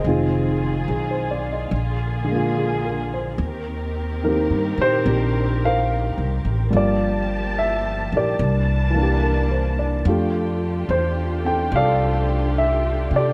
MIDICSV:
0, 0, Header, 1, 4, 480
1, 0, Start_track
1, 0, Key_signature, -1, "major"
1, 0, Tempo, 833333
1, 24, Time_signature, 4, 2, 24, 8
1, 7679, End_track
2, 0, Start_track
2, 0, Title_t, "Grand piano"
2, 0, Program_c, 0, 0
2, 0, Control_c, 0, 64, 127
2, 0, Note_on_c, 0, 68, 48
2, 0, Note_on_c, 0, 72, 50
2, 0, Note_on_c, 0, 75, 69
2, 30, Control_c, 0, 64, 0
2, 35, Note_on_c, 0, 51, 48
2, 36, Note_on_c, 0, 56, 44
2, 41, Note_on_c, 0, 60, 47
2, 45, Note_on_c, 0, 65, 53
2, 133, Control_c, 0, 64, 127
2, 491, Note_off_c, 0, 75, 0
2, 505, Note_off_c, 0, 68, 0
2, 514, Note_on_c, 0, 68, 40
2, 630, Note_off_c, 0, 72, 0
2, 638, Note_on_c, 0, 72, 43
2, 736, Note_off_c, 0, 68, 0
2, 754, Note_on_c, 0, 74, 43
2, 839, Note_off_c, 0, 72, 0
2, 878, Note_on_c, 0, 75, 42
2, 898, Note_off_c, 0, 74, 0
2, 991, Note_off_c, 0, 51, 0
2, 991, Note_off_c, 0, 56, 0
2, 993, Control_c, 0, 64, 0
2, 994, Note_off_c, 0, 60, 0
2, 996, Note_off_c, 0, 65, 0
2, 1040, Note_off_c, 0, 75, 0
2, 1103, Control_c, 0, 64, 127
2, 1292, Note_on_c, 0, 50, 46
2, 1312, Note_on_c, 0, 56, 43
2, 1333, Note_on_c, 0, 58, 43
2, 1354, Note_on_c, 0, 65, 51
2, 1484, Note_on_c, 0, 68, 40
2, 1642, Note_on_c, 0, 70, 39
2, 1779, Note_off_c, 0, 68, 0
2, 1807, Note_on_c, 0, 72, 42
2, 1886, Note_off_c, 0, 70, 0
2, 1940, Note_off_c, 0, 50, 0
2, 1950, Note_off_c, 0, 56, 0
2, 1956, Control_c, 0, 64, 0
2, 1960, Note_off_c, 0, 58, 0
2, 1971, Note_off_c, 0, 65, 0
2, 2048, Note_off_c, 0, 72, 0
2, 2066, Control_c, 0, 64, 127
2, 2439, Note_on_c, 0, 51, 42
2, 2444, Note_on_c, 0, 58, 36
2, 2445, Note_on_c, 0, 70, 70
2, 2455, Note_on_c, 0, 60, 38
2, 2467, Note_on_c, 0, 67, 46
2, 2739, Note_off_c, 0, 70, 0
2, 2770, Note_off_c, 0, 67, 0
2, 2773, Note_on_c, 0, 72, 92
2, 2778, Note_on_c, 0, 67, 56
2, 2904, Note_off_c, 0, 60, 0
2, 2913, Note_on_c, 0, 60, 40
2, 2918, Note_on_c, 0, 62, 35
2, 2923, Note_off_c, 0, 67, 0
2, 2932, Note_on_c, 0, 67, 41
2, 3221, Note_off_c, 0, 72, 0
2, 3255, Note_on_c, 0, 70, 63
2, 3257, Note_on_c, 0, 77, 86
2, 3258, Note_on_c, 0, 72, 61
2, 3857, Note_off_c, 0, 70, 0
2, 3858, Note_off_c, 0, 77, 0
2, 3859, Note_off_c, 0, 72, 0
2, 3861, Note_on_c, 0, 55, 45
2, 3864, Note_off_c, 0, 58, 0
2, 3871, Note_off_c, 0, 60, 0
2, 3873, Note_on_c, 0, 58, 45
2, 3874, Note_off_c, 0, 62, 0
2, 3875, Note_off_c, 0, 51, 0
2, 3878, Control_c, 0, 64, 0
2, 3881, Note_off_c, 0, 67, 0
2, 3884, Note_on_c, 0, 65, 44
2, 3889, Note_on_c, 0, 70, 53
2, 3897, Note_on_c, 0, 74, 78
2, 3988, Control_c, 0, 64, 127
2, 4340, Note_off_c, 0, 74, 0
2, 4369, Note_on_c, 0, 76, 79
2, 4661, Note_off_c, 0, 76, 0
2, 4691, Note_off_c, 0, 70, 0
2, 4700, Note_on_c, 0, 70, 48
2, 4705, Note_on_c, 0, 67, 52
2, 4705, Note_on_c, 0, 74, 71
2, 4824, Note_off_c, 0, 55, 0
2, 4830, Note_off_c, 0, 58, 0
2, 4835, Note_off_c, 0, 65, 0
2, 4836, Control_c, 0, 64, 0
2, 4945, Control_c, 0, 64, 127
2, 5128, Note_on_c, 0, 52, 53
2, 5153, Note_on_c, 0, 58, 50
2, 5171, Note_on_c, 0, 62, 48
2, 5189, Note_off_c, 0, 67, 0
2, 5197, Note_on_c, 0, 67, 55
2, 5304, Note_off_c, 0, 70, 0
2, 5313, Note_on_c, 0, 70, 41
2, 5479, Note_on_c, 0, 72, 44
2, 5611, Note_off_c, 0, 70, 0
2, 5623, Note_off_c, 0, 74, 0
2, 5639, Note_on_c, 0, 74, 44
2, 5722, Note_off_c, 0, 72, 0
2, 5774, Note_off_c, 0, 52, 0
2, 5786, Note_off_c, 0, 58, 0
2, 5793, Control_c, 0, 64, 0
2, 5796, Note_off_c, 0, 62, 0
2, 5798, Note_on_c, 0, 65, 52
2, 5799, Note_off_c, 0, 67, 0
2, 5803, Note_on_c, 0, 57, 45
2, 5805, Note_on_c, 0, 62, 44
2, 5807, Note_on_c, 0, 67, 57
2, 5882, Note_off_c, 0, 74, 0
2, 5910, Control_c, 0, 64, 127
2, 6281, Note_on_c, 0, 72, 79
2, 6593, Note_on_c, 0, 60, 39
2, 6603, Note_on_c, 0, 79, 81
2, 6607, Note_off_c, 0, 72, 0
2, 6610, Note_on_c, 0, 69, 45
2, 6757, Note_off_c, 0, 79, 0
2, 6771, Note_off_c, 0, 69, 0
2, 6772, Note_on_c, 0, 77, 91
2, 6778, Note_on_c, 0, 74, 62
2, 6780, Note_on_c, 0, 69, 63
2, 7217, Note_off_c, 0, 77, 0
2, 7247, Note_on_c, 0, 76, 75
2, 7571, Note_off_c, 0, 76, 0
2, 7572, Note_off_c, 0, 74, 0
2, 7576, Note_off_c, 0, 67, 0
2, 7576, Note_off_c, 0, 69, 0
2, 7581, Note_on_c, 0, 74, 81
2, 7585, Note_on_c, 0, 67, 50
2, 7585, Note_on_c, 0, 69, 51
2, 7679, Note_off_c, 0, 57, 0
2, 7679, Note_off_c, 0, 60, 0
2, 7679, Note_off_c, 0, 62, 0
2, 7679, Note_off_c, 0, 65, 0
2, 7679, Note_off_c, 0, 67, 0
2, 7679, Note_off_c, 0, 69, 0
2, 7679, Note_off_c, 0, 74, 0
2, 7679, End_track
3, 0, Start_track
3, 0, Title_t, "String section"
3, 0, Program_c, 1, 48
3, 0, Note_on_c, 1, 60, 57
3, 23, Note_on_c, 1, 51, 58
3, 23, Note_on_c, 1, 65, 53
3, 25, Note_on_c, 1, 68, 65
3, 959, Note_off_c, 1, 60, 0
3, 975, Note_off_c, 1, 51, 0
3, 977, Note_off_c, 1, 68, 0
3, 987, Note_on_c, 1, 50, 63
3, 990, Note_on_c, 1, 68, 69
3, 993, Note_on_c, 1, 58, 58
3, 1930, Note_off_c, 1, 65, 0
3, 1940, Note_off_c, 1, 50, 0
3, 1942, Note_off_c, 1, 68, 0
3, 1943, Note_off_c, 1, 58, 0
3, 1943, Note_on_c, 1, 60, 53
3, 1943, Note_on_c, 1, 70, 67
3, 1947, Note_on_c, 1, 51, 58
3, 1947, Note_on_c, 1, 67, 55
3, 3848, Note_off_c, 1, 60, 0
3, 3848, Note_off_c, 1, 70, 0
3, 3850, Note_off_c, 1, 51, 0
3, 3850, Note_off_c, 1, 67, 0
3, 3865, Note_on_c, 1, 58, 58
3, 3867, Note_on_c, 1, 81, 68
3, 3871, Note_on_c, 1, 53, 60
3, 3872, Note_on_c, 1, 67, 53
3, 4816, Note_off_c, 1, 58, 0
3, 4817, Note_off_c, 1, 81, 0
3, 4819, Note_off_c, 1, 53, 0
3, 4820, Note_off_c, 1, 67, 0
3, 4827, Note_on_c, 1, 52, 69
3, 4830, Note_on_c, 1, 62, 63
3, 4831, Note_on_c, 1, 58, 59
3, 4833, Note_on_c, 1, 81, 72
3, 5775, Note_off_c, 1, 52, 0
3, 5777, Note_off_c, 1, 62, 0
3, 5778, Note_off_c, 1, 58, 0
3, 5779, Note_off_c, 1, 81, 0
3, 5784, Note_on_c, 1, 62, 56
3, 5784, Note_on_c, 1, 65, 63
3, 5785, Note_on_c, 1, 57, 58
3, 5787, Note_on_c, 1, 67, 67
3, 7679, Note_off_c, 1, 57, 0
3, 7679, Note_off_c, 1, 62, 0
3, 7679, Note_off_c, 1, 65, 0
3, 7679, Note_off_c, 1, 67, 0
3, 7679, End_track
4, 0, Start_track
4, 0, Title_t, "Upright bass"
4, 0, Program_c, 2, 32
4, 26, Note_on_c, 2, 29, 67
4, 482, Note_off_c, 2, 29, 0
4, 507, Note_on_c, 2, 35, 61
4, 964, Note_off_c, 2, 35, 0
4, 986, Note_on_c, 2, 34, 72
4, 1926, Note_off_c, 2, 34, 0
4, 1948, Note_on_c, 2, 39, 67
4, 2566, Note_off_c, 2, 39, 0
4, 2593, Note_on_c, 2, 43, 51
4, 2740, Note_off_c, 2, 43, 0
4, 2750, Note_on_c, 2, 46, 62
4, 2899, Note_off_c, 2, 46, 0
4, 2913, Note_on_c, 2, 34, 77
4, 3529, Note_off_c, 2, 34, 0
4, 3558, Note_on_c, 2, 36, 56
4, 3703, Note_off_c, 2, 36, 0
4, 3714, Note_on_c, 2, 33, 59
4, 3861, Note_off_c, 2, 33, 0
4, 3875, Note_on_c, 2, 31, 70
4, 4652, Note_off_c, 2, 31, 0
4, 4679, Note_on_c, 2, 34, 63
4, 4821, Note_off_c, 2, 34, 0
4, 4834, Note_on_c, 2, 36, 78
4, 5766, Note_off_c, 2, 36, 0
4, 5790, Note_on_c, 2, 41, 77
4, 6244, Note_off_c, 2, 41, 0
4, 6271, Note_on_c, 2, 40, 65
4, 6726, Note_off_c, 2, 40, 0
4, 6749, Note_on_c, 2, 36, 77
4, 7529, Note_off_c, 2, 36, 0
4, 7550, Note_on_c, 2, 48, 60
4, 7679, Note_off_c, 2, 48, 0
4, 7679, End_track
0, 0, End_of_file